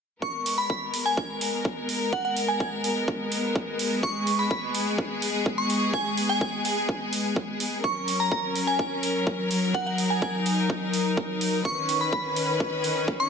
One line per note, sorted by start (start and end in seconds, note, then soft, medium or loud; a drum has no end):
0.22 7.80 G#3 medium
0.22 7.80 B3 medium
0.22 3.99 A#4 medium
0.22 0.56 C#6 medium
0.22 kick loud
0.46 open hi-hat medium
0.58 0.66 B5 medium
0.70 0.77 B5 medium
0.70 kick loud
0.94 open hi-hat loud
1.06 1.26 G#5 medium
1.17 kick loud
1.41 open hi-hat loud
1.65 kick loud
1.89 open hi-hat loud
2.13 2.20 F#5 medium
2.13 kick loud
2.25 2.32 F#5 medium
2.37 open hi-hat medium
2.48 2.56 G#5 medium
2.60 2.68 G#5 medium
2.60 kick loud
2.84 open hi-hat loud
3.08 kick loud
3.32 open hi-hat loud
3.56 kick loud
3.79 open hi-hat loud
4.03 7.80 G#4 medium
4.03 4.37 C#6 medium
4.03 kick loud
4.27 open hi-hat loud
4.39 4.47 B5 medium
4.51 4.59 B5 medium
4.51 kick loud
4.75 open hi-hat loud
4.98 kick loud
5.22 open hi-hat loud
5.46 kick loud
5.58 5.91 C#6 medium
5.70 open hi-hat loud
5.94 6.14 G#5 medium
5.94 kick loud
6.17 open hi-hat medium
6.29 6.77 G#5 medium
6.41 kick loud
6.65 open hi-hat loud
6.89 kick loud
7.13 open hi-hat loud
7.36 kick loud
7.60 open hi-hat loud
7.84 11.61 F#3 medium
7.84 9.73 C#4 medium
7.84 11.61 A#4 medium
7.84 8.17 C#6 medium
7.84 kick loud
8.08 open hi-hat medium
8.20 8.28 A#5 medium
8.32 8.39 A#5 medium
8.32 kick loud
8.55 open hi-hat medium
8.67 8.87 G#5 medium
8.79 kick loud
9.03 open hi-hat loud
9.27 kick loud
9.51 open hi-hat loud
9.74 11.63 D#4 medium
9.74 9.82 F#5 medium
9.74 kick loud
9.87 9.94 F#5 medium
9.98 open hi-hat medium
10.10 10.18 G#5 medium
10.22 10.30 G#5 medium
10.22 kick loud
10.46 open hi-hat medium
10.70 kick loud
10.93 open hi-hat medium
11.17 kick loud
11.41 open hi-hat medium
11.65 13.29 D#3 medium
11.65 13.29 C#4 medium
11.65 13.29 B4 medium
11.65 11.98 C#6 medium
11.65 kick loud
11.89 open hi-hat medium
12.01 12.08 B5 medium
12.13 12.20 B5 medium
12.13 kick loud
12.36 open hi-hat medium
12.60 kick loud
12.84 open hi-hat loud
13.08 kick loud
13.20 13.29 C#6 medium